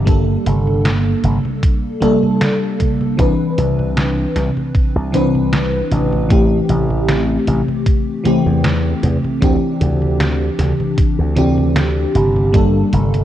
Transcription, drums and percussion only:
0.07 kick, closed hi-hat, high conga
0.46 closed hi-hat, high conga
0.67 high conga
0.85 snare, closed hi-hat, high conga
1.24 closed hi-hat, high conga
1.45 high conga
1.63 kick, closed hi-hat, high conga
2.02 closed hi-hat, high conga
2.23 high conga
2.41 snare, closed hi-hat, high conga
2.80 kick, closed hi-hat, high conga
3.01 high conga
3.19 kick, closed hi-hat
3.58 closed hi-hat, high conga
3.79 high conga
3.97 snare, closed hi-hat, high conga
4.36 snare, closed hi-hat, high conga
4.57 high conga
4.75 kick, closed hi-hat, high conga
5.14 closed hi-hat, high conga
5.35 high conga
5.53 snare, closed hi-hat, high conga
5.92 closed hi-hat, high conga
6.13 high conga
6.30 kick, closed hi-hat, high conga
6.69 closed hi-hat, high conga
6.90 high conga
7.09 snare, closed hi-hat, high conga
7.47 closed hi-hat, high conga
7.68 high conga
7.86 kick, closed hi-hat, high conga
8.26 closed hi-hat, high conga
8.47 high conga
8.64 snare, closed hi-hat, high conga
9.03 closed hi-hat, high conga
9.24 high conga
9.42 kick, closed hi-hat
9.81 closed hi-hat, high conga
10.02 high conga
10.20 snare, closed hi-hat, high conga
10.59 snare, closed hi-hat, high conga
10.80 high conga
10.98 kick, closed hi-hat, high conga
11.37 closed hi-hat, high conga
11.58 high conga
11.76 snare, closed hi-hat, high conga
12.15 closed hi-hat, high conga
12.36 high conga
12.54 kick, closed hi-hat
12.93 closed hi-hat, high conga
13.14 closed hi-hat, high conga

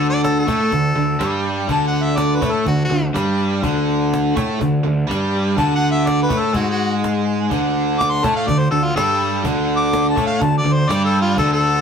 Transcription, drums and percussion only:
0.00 cajon slap
0.25 cajon slap
0.48 cajon bass
0.72 cajon bass, cajon slap
0.97 cajon slap
1.21 cajon slap
1.44 cajon slap
1.69 cajon bass
1.93 cajon slap
2.18 cajon slap
2.42 cajon bass
2.67 cajon bass, cajon slap
2.90 cajon slap
3.16 cajon slap
3.39 cajon slap
3.64 cajon bass
3.88 cajon slap
4.14 cajon slap
4.37 cajon bass
4.61 cajon bass
4.85 cajon slap
5.11 cajon slap
5.35 cajon slap
5.58 cajon bass
5.82 cajon slap
6.07 cajon slap
6.30 cajon bass
6.55 cajon bass
6.79 cajon slap
7.04 cajon slap
7.28 cajon slap
7.51 cajon bass
7.76 cajon slap
8.01 cajon slap
8.24 cajon bass
8.48 cajon bass
8.72 cajon slap
8.97 cajon slap
9.21 cajon slap
9.45 cajon bass
9.68 cajon slap
9.93 cajon slap
10.17 cajon bass
10.42 cajon bass, cajon slap
10.66 cajon slap
10.90 cajon slap
11.14 cajon slap
11.38 cajon bass
11.62 cajon slap

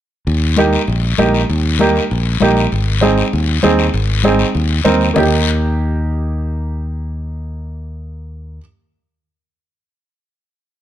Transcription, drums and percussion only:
0.27 long guiro
0.57 high conga, short guiro
0.73 short guiro
0.88 long guiro
1.18 high conga, short guiro
1.34 short guiro
1.50 long guiro
1.79 high conga, short guiro
1.96 short guiro
2.11 long guiro
2.40 high conga, short guiro
2.57 short guiro
2.72 long guiro
3.02 high conga, short guiro
3.18 short guiro
3.33 long guiro
3.63 high conga, short guiro
3.79 short guiro
3.94 long guiro
4.24 high conga, short guiro
4.39 short guiro
4.55 long guiro
4.85 high conga, short guiro
5.01 short guiro
5.16 low conga, long guiro

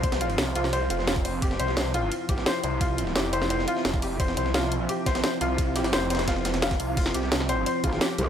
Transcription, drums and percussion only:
0.03 kick, closed hi-hat, ride
0.12 snare, ride
0.21 closed hi-hat
0.30 ride
0.38 snare, closed hi-hat, ride
0.55 closed hi-hat, ride
0.64 snare
0.73 closed hi-hat, ride
0.90 closed hi-hat, ride
0.99 snare
1.07 snare, closed hi-hat, ride
1.16 kick, ride
1.25 closed hi-hat, open hi-hat
1.42 kick, closed hi-hat, ride
1.51 snare
1.60 closed hi-hat, ride
1.68 snare
1.77 snare, closed hi-hat, ride
1.86 snare
1.94 closed hi-hat, ride
2.12 closed hi-hat, ride
2.29 kick, closed hi-hat, ride
2.38 snare
2.46 snare, closed hi-hat, ride
2.64 closed hi-hat, ride
2.81 kick, closed hi-hat, ride
2.98 closed hi-hat, ride
3.07 snare
3.16 snare, closed hi-hat, ride
3.33 closed hi-hat, ride
3.42 snare
3.50 closed hi-hat, ride
3.59 snare
3.68 closed hi-hat, ride
3.76 snare
3.85 snare, closed hi-hat, ride
3.94 kick, ride
4.02 closed hi-hat, open hi-hat
4.20 kick, closed hi-hat, ride
4.28 snare
4.37 closed hi-hat, ride
4.46 snare
4.54 snare, closed hi-hat, ride
4.63 snare
4.72 closed hi-hat, ride
4.89 closed hi-hat, ride
5.06 kick, snare, closed hi-hat, ride
5.15 snare, ride
5.24 snare, closed hi-hat, ride
5.41 closed hi-hat, ride
5.58 kick, closed hi-hat, ride
5.76 snare, closed hi-hat, ride
5.84 snare, ride
5.93 snare, closed hi-hat, ride
6.10 snare, closed hi-hat, ride
6.15 snare, ride
6.19 snare, ride
6.28 kick, snare, closed hi-hat, ride
6.36 snare
6.45 snare, closed hi-hat, ride
6.54 snare, ride
6.62 snare, closed hi-hat, ride
6.71 kick, snare, ride
6.80 closed hi-hat, open hi-hat
6.97 kick, closed hi-hat, crash, ride
7.06 snare
7.14 closed hi-hat, ride
7.23 snare
7.32 snare, closed hi-hat, ride
7.40 snare
7.49 closed hi-hat, ride
7.66 closed hi-hat, ride
7.84 kick, closed hi-hat, ride
7.93 snare
8.01 snare, closed hi-hat, ride
8.18 closed hi-hat, ride

